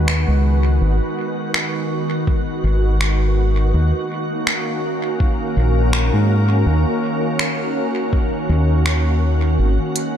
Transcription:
Already playing: fingered electric bass D#2, ambient pad D#3 G#3 B3 F#4 B4
0.08 finger snap
0.28 fingered electric bass C#2
0.81 fingered electric bass G#1
1.54 finger snap
2.27 kick
2.64 fingered electric bass G#1
3.01 finger snap
3.74 fingered electric bass D#2
3.91 ambient pad A#3
4.23 ambient pad C#4
4.47 finger snap
4.70 ambient pad A#4
5.20 kick
5.57 fingered electric bass A#1
5.93 finger snap
6.13 fingered electric bass G#2
6.66 fingered electric bass D#2
7.39 finger snap
8.13 kick
8.49 fingered electric bass D#2
8.86 finger snap
9.59 fingered electric bass G#1
9.82 ambient pad G#3
9.87 ambient pad B4
9.96 closed hi-hat

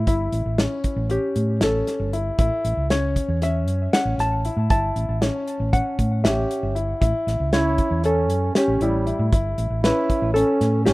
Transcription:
0.07 fingered electric bass G1, grand piano E4, hollow-body jazz guitar E4, kick, closed hi-hat
0.32 fingered electric bass A1, closed hi-hat
0.45 fingered electric bass A1
0.58 grand piano C#4, snare, closed hi-hat
0.84 kick, closed hi-hat
0.96 fingered electric bass A1
1.10 grand piano C#4, hollow-body jazz guitar G4, closed hi-hat
1.36 fingered electric bass A2, closed hi-hat
1.61 fingered electric bass A1, grand piano C#4, hollow-body jazz guitar A4, snare, closed hi-hat
1.87 snare, closed hi-hat
2.00 fingered electric bass G1
2.13 grand piano E4, closed hi-hat
2.39 fingered electric bass A1, grand piano E4, kick, closed hi-hat
2.65 fingered electric bass A1, closed hi-hat
2.77 fingered electric bass C#2
2.90 grand piano C#4, hollow-body jazz guitar C#5, snare, closed hi-hat
3.16 kick, closed hi-hat
3.28 fingered electric bass E2
3.42 grand piano C#4, hollow-body jazz guitar E5, snare, closed hi-hat
3.67 fingered electric bass F#2, closed hi-hat
3.93 grand piano C#4, hollow-body jazz guitar F#5, snare, closed hi-hat
4.05 fingered electric bass A1
4.18 fingered electric bass A1, hollow-body jazz guitar A5, snare, closed hi-hat
4.45 grand piano E4, closed hi-hat
4.57 fingered electric bass A2
4.70 fingered electric bass G1, grand piano E4, hollow-body jazz guitar A5, kick, closed hi-hat
4.96 fingered electric bass A1, closed hi-hat
5.09 fingered electric bass A1
5.22 grand piano C#4, snare, closed hi-hat
5.47 closed hi-hat
5.60 fingered electric bass A1
5.73 grand piano C#4, hollow-body jazz guitar F#5, kick, closed hi-hat
5.99 fingered electric bass A2, kick, closed hi-hat
6.24 fingered electric bass A1, grand piano C#4, flugelhorn G4, hollow-body jazz guitar E5, snare, closed hi-hat
6.51 closed hi-hat
6.63 fingered electric bass G1
6.75 grand piano E4, closed hi-hat
7.01 fingered electric bass A1, grand piano E4, kick, closed hi-hat
7.27 fingered electric bass A1, snare, closed hi-hat
7.40 fingered electric bass C#2
7.53 grand piano C#4, flugelhorn E4, hollow-body jazz guitar C#5, snare, closed hi-hat
7.78 kick, closed hi-hat
7.91 fingered electric bass E2
8.04 grand piano C#4, flugelhorn C#4, hollow-body jazz guitar A4, closed hi-hat
8.29 fingered electric bass F#2, closed hi-hat
8.55 grand piano C#4, flugelhorn C#4, hollow-body jazz guitar G4, snare, closed hi-hat
8.68 fingered electric bass A1
8.81 fingered electric bass A1, flugelhorn G3, hollow-body jazz guitar E4, closed hi-hat
9.07 grand piano E4, closed hi-hat
9.19 fingered electric bass A2
9.32 fingered electric bass G1, grand piano E4, kick, closed hi-hat
9.58 fingered electric bass A1, closed hi-hat
9.70 fingered electric bass A1
9.83 grand piano C#4, flugelhorn E4, hollow-body jazz guitar B4, snare, closed hi-hat
10.10 kick, closed hi-hat
10.22 fingered electric bass A1
10.34 flugelhorn C#4, grand piano C#4, hollow-body jazz guitar A4, closed hi-hat
10.61 fingered electric bass A2, snare, closed hi-hat
10.86 fingered electric bass A1, flugelhorn C#4, grand piano C#4, hollow-body jazz guitar G4, snare, closed hi-hat

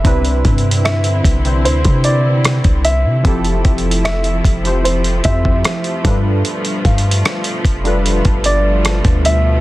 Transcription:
Already playing: grand piano E5
0.03 808-style bass C2, synth keys C3 C4 D4 E4 B4, string section D3 C4 E4, kick, closed hi-hat
0.25 closed hi-hat
0.45 808-style bass G2, kick, closed hi-hat
0.58 closed hi-hat
0.71 closed hi-hat
0.85 grand piano E5, cross-stick, closed hi-hat
1.04 closed hi-hat
1.24 808-style bass B1, kick, closed hi-hat
1.44 synth keys C3 C4 D4 E4 C5, closed hi-hat
1.65 808-style bass D2, grand piano C5, closed hi-hat
1.85 808-style bass C3, kick, closed hi-hat
2.04 grand piano D5, closed hi-hat
2.45 cross-stick, closed hi-hat
2.64 808-style bass C2, kick, closed hi-hat
2.85 grand piano E5, closed hi-hat
3.05 808-style bass C3
3.24 808-style bass F1, synth keys F3 C4 E4 G4 A4, string section F3 A3 E4, kick, closed hi-hat
3.44 closed hi-hat
3.65 808-style bass F1, kick, closed hi-hat
3.78 closed hi-hat
3.91 closed hi-hat
4.04 grand piano E5, cross-stick, closed hi-hat
4.24 closed hi-hat
4.44 808-style bass F1, kick, closed hi-hat
4.64 synth keys F3 C4 E4 G4 C5, closed hi-hat
4.84 grand piano C5, closed hi-hat
5.04 closed hi-hat
5.24 808-style bass F2, synth keys F3 C4 E4 G4 C5, grand piano E5, kick, closed hi-hat
5.45 kick
5.64 cross-stick, closed hi-hat
5.84 closed hi-hat
6.04 808-style bass G2, string section B2, synth keys G3 D4 F4 A4 B4, kick, closed hi-hat
6.45 closed hi-hat
6.65 closed hi-hat
6.85 808-style bass G2, synth bell F5, kick, closed hi-hat
6.98 closed hi-hat
7.11 closed hi-hat
7.25 cross-stick, closed hi-hat
7.44 closed hi-hat
7.65 808-style bass F1, kick, closed hi-hat
7.84 synth keys G3 D4 F4 A4 B4, closed hi-hat
8.06 closed hi-hat
8.25 808-style bass G1, kick, closed hi-hat
8.44 grand piano D5, closed hi-hat
8.85 synth bell A5, cross-stick, closed hi-hat
9.05 808-style bass D2, kick, closed hi-hat
9.25 grand piano E5, closed hi-hat

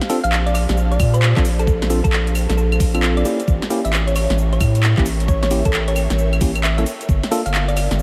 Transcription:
Already playing: ambient pad G4 C5 F5 A5
0.01 snare, closed hi-hat, cabasa
0.09 tine electric piano C4 D4 F4 A4, open hi-hat, cabasa
0.24 sub bass A#1, synth pluck F5, closed hi-hat, cabasa
0.32 synth pluck F5, clap, cabasa
0.46 synth pluck D5, closed hi-hat, cabasa
0.54 synth pluck D5, open hi-hat, cabasa, claves
0.69 sub bass A#1, snare, closed hi-hat, cabasa
0.77 cabasa
0.92 synth pluck D5, closed hi-hat, cabasa
1.00 sub bass A#2, kick, open hi-hat, cabasa, claves
1.14 synth pluck C5, closed hi-hat, cabasa
1.22 clap, cabasa
1.37 sub bass A#1, tine electric piano C4 D4 F4 A4, kick, clap, closed hi-hat, cabasa
1.45 open hi-hat, cabasa
1.59 synth pluck A4, closed hi-hat, cabasa
1.67 kick, cabasa
1.82 snare, closed hi-hat, cabasa
1.90 tine electric piano C4 D4 F4 A4, open hi-hat, cabasa
2.04 sub bass A#1, synth pluck A4, kick, closed hi-hat, cabasa
2.13 clap, cabasa
2.27 closed hi-hat, cabasa
2.35 open hi-hat, cabasa, claves
2.49 sub bass A#1, synth pluck A4, snare, closed hi-hat, cabasa
2.57 synth pluck A4, cabasa
2.72 closed hi-hat, cabasa, claves
2.80 sub bass A#1, kick, open hi-hat, cabasa
2.94 tine electric piano C4 D4 F4 A4, closed hi-hat, cabasa, claves
3.03 clap, cabasa
3.17 synth pluck D5, closed hi-hat, cabasa
3.25 tine electric piano A#3 C#4 E4 G4, ambient pad A#4, synth pluck D5, open hi-hat, cabasa
3.40 closed hi-hat, cabasa
3.44 sub bass A1, ambient pad C#5, kick, cabasa
3.52 ambient pad E5
3.62 snare, closed hi-hat, cabasa
3.70 tine electric piano A#3 C#4 E4 G4, open hi-hat, cabasa
3.85 sub bass A1, synth pluck E5, closed hi-hat, cabasa
3.93 synth pluck E5, clap, cabasa
4.07 synth pluck C#5, closed hi-hat, cabasa
4.15 synth pluck C#5, ambient pad G5, open hi-hat, cabasa, claves
4.30 sub bass A1, snare, closed hi-hat, cabasa
4.38 cabasa
4.53 synth pluck C#5, closed hi-hat, cabasa
4.61 sub bass A2, kick, open hi-hat, cabasa, claves
4.75 closed hi-hat, cabasa
4.83 clap, cabasa
4.98 sub bass A1, tine electric piano A#3 C#4 E4 G4, kick, clap, closed hi-hat, cabasa
5.06 open hi-hat, cabasa
5.20 closed hi-hat, cabasa
5.28 synth pluck C#5, kick, cabasa
5.43 synth pluck C#5, snare, closed hi-hat, cabasa
5.51 tine electric piano A#3 C#4 E4 G4, open hi-hat, cabasa
5.65 sub bass A1, synth pluck A4, kick, closed hi-hat, cabasa
5.73 clap, cabasa
5.88 synth pluck C#5, closed hi-hat, cabasa
5.96 open hi-hat, cabasa, claves
6.10 sub bass A1, snare, closed hi-hat, cabasa
6.18 cabasa
6.33 closed hi-hat, cabasa, claves
6.41 sub bass A1, tine electric piano A#3 C#4 E4 G4, kick, open hi-hat, cabasa
6.56 closed hi-hat, cabasa, claves
6.63 synth pluck E5, clap, cabasa
6.78 tine electric piano A#3 C#4 E4 A4, synth pluck E5, closed hi-hat, cabasa
6.86 ambient pad G4, open hi-hat, cabasa
6.97 ambient pad C5, closed hi-hat, cabasa
7.09 sub bass G1, kick, cabasa
7.16 ambient pad A5
7.23 snare, closed hi-hat, cabasa
7.31 tine electric piano A#3 D4 F4 A4, ambient pad F5, open hi-hat, cabasa
7.46 sub bass G1, synth pluck F5, closed hi-hat, cabasa
7.54 synth pluck F5, clap, cabasa
7.68 synth pluck D5, closed hi-hat, cabasa
7.76 synth pluck D5, open hi-hat, cabasa, claves
7.91 sub bass G1, snare, closed hi-hat, cabasa
7.99 cabasa

